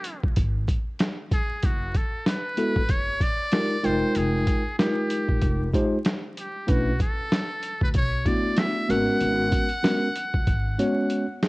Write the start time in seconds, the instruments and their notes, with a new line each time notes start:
Already playing: muted trumpet G#4
0.04 closed hi-hat
0.23 upright bass C#2, kick
0.36 upright bass G#1, kick, closed hi-hat
0.68 kick, closed hi-hat
0.99 snare, closed hi-hat
1.31 muted trumpet G#4, kick, closed hi-hat
1.63 upright bass F#1, muted trumpet F#4, kick, closed hi-hat
1.95 muted trumpet A4, kick, closed hi-hat
2.26 muted trumpet B4, snare, closed hi-hat
2.57 tine electric piano G#3 B3 E4 F#4 A4, closed hi-hat
2.76 upright bass A1, kick
2.89 upright bass F#1, muted trumpet C#5, kick, closed hi-hat
3.21 muted trumpet D5, kick, closed hi-hat
3.52 tine electric piano G#3 D#4 F4 G4 A#4, snare, closed hi-hat
3.84 upright bass F1, tine electric piano G#3 D#4 F4 A#4 G5, muted trumpet C5, closed hi-hat
4.15 upright bass F1, muted trumpet G#4, closed hi-hat
4.47 kick, closed hi-hat
4.78 tine electric piano G#3 D#4 F4 G4 A#4, muted trumpet G4, snare, closed hi-hat
5.10 closed hi-hat
5.29 upright bass A#1, kick
5.42 upright bass F1, kick, closed hi-hat
5.73 tine electric piano G#3 D#4 F4 G4 C5, kick, closed hi-hat
6.05 snare, closed hi-hat
6.37 muted trumpet G4, closed hi-hat
6.67 upright bass B1, tine electric piano A3 C#4 D4 E4 B4, muted trumpet F#4, kick, closed hi-hat
7.00 muted trumpet A4, kick, closed hi-hat
7.32 snare, closed hi-hat
7.63 closed hi-hat
7.81 upright bass D2, muted trumpet B4, kick
7.94 upright bass B1, muted trumpet C#5, kick, closed hi-hat
8.26 tine electric piano A3 B3 D4 E4 F#4, muted trumpet D5, kick, closed hi-hat
8.56 muted trumpet E5, snare, closed hi-hat
8.89 upright bass G#1, tine electric piano G#3 A#3 C#4 F#4 A#4, muted trumpet F#5, closed hi-hat
8.95 tine electric piano B3
9.20 upright bass G#1, closed hi-hat
9.52 kick, closed hi-hat
9.69 closed hi-hat
9.83 tine electric piano G#3 B3 C#4 F#4 A#4, snare, closed hi-hat
10.16 closed hi-hat
10.34 upright bass C#2, kick
10.47 upright bass G#1, kick, closed hi-hat
10.78 tine electric piano G#3 B3 C#4 F#4 C#5, closed hi-hat
11.10 closed hi-hat
11.43 tine electric piano G#4, snare, closed hi-hat